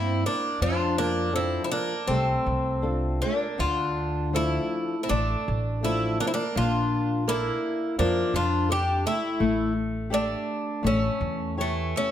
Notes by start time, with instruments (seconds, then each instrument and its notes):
Already playing: upright bass G2, nylon-string guitar A#3 C4 E4, twelve-string acoustic guitar C4, bouzouki E4
0.26 twelve-string acoustic guitar A#3, bouzouki D4
0.61 upright bass F2, nylon-string guitar F3, twelve-string acoustic guitar D4, bouzouki F4
0.98 twelve-string acoustic guitar A#3, bouzouki D4
1.33 nylon-string guitar F3 D4 A4, twelve-string acoustic guitar C4, bouzouki E4
1.64 twelve-string acoustic guitar C4, bouzouki E4
1.71 twelve-string acoustic guitar A#3, bouzouki D4
2.07 upright bass C2, nylon-string guitar C3, twelve-string acoustic guitar A3, bouzouki C4
2.46 upright bass C2
2.82 nylon-string guitar D4 F4 A4
3.22 twelve-string acoustic guitar A#3, bouzouki D4
3.58 upright bass D2, nylon-string guitar D3, twelve-string acoustic guitar D4, bouzouki F4
4.33 nylon-string guitar F3 D4 A4, twelve-string acoustic guitar A3, bouzouki E4
5.03 twelve-string acoustic guitar C4, bouzouki E4
5.09 upright bass A1, twelve-string acoustic guitar A3, nylon-string guitar A3, bouzouki D4
5.48 upright bass A1
5.83 nylon-string guitar F3 D4 A4, twelve-string acoustic guitar A3, bouzouki E4
6.20 twelve-string acoustic guitar A#3, bouzouki D4
6.27 twelve-string acoustic guitar C4, bouzouki E4
6.34 twelve-string acoustic guitar A#3, bouzouki D4
6.55 upright bass A#1, nylon-string guitar A#3, twelve-string acoustic guitar D4, bouzouki F4
7.28 twelve-string acoustic guitar A#3, bouzouki E4, nylon-string guitar A4 A#4 D5
7.99 upright bass F2, nylon-string guitar F3, twelve-string acoustic guitar A#3, bouzouki D4
8.34 upright bass F2, twelve-string acoustic guitar D4, bouzouki F4
8.69 twelve-string acoustic guitar D4, bouzouki G4, nylon-string guitar A4 D5
9.06 twelve-string acoustic guitar A3, bouzouki E4
9.40 upright bass A1, nylon-string guitar A3
10.10 twelve-string acoustic guitar A3, bouzouki D4, nylon-string guitar G4 A4 D5
10.83 upright bass A1, nylon-string guitar A3, twelve-string acoustic guitar A3, bouzouki C#4
11.21 upright bass E2
11.57 twelve-string acoustic guitar E3, bouzouki A3, nylon-string guitar G4 A4 C#5
11.96 twelve-string acoustic guitar A3, bouzouki C#4